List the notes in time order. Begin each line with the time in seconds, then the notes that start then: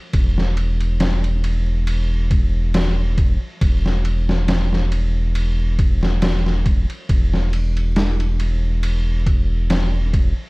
0.13 E1, kick, ride
0.38 snare
0.57 ride
0.81 ride
1.00 snare, ride
1.24 ride
1.44 ride
1.87 ride
2.31 kick, ride
2.74 snare, ride
3.18 kick, ride
3.61 E1, kick, ride
3.86 snare
4.05 ride
4.29 snare
4.48 snare, ride
4.73 snare
4.92 ride
5.35 ride
5.79 kick, ride
6.03 snare
6.22 snare, ride
6.46 snare
6.66 kick, ride
6.90 ride
7.09 E1, kick, ride
7.34 snare
7.53 ride
7.77 ride
7.96 snare, ride
8.20 ride
8.40 ride
8.83 ride
9.26 kick, ride
9.70 snare, ride
10.13 kick, ride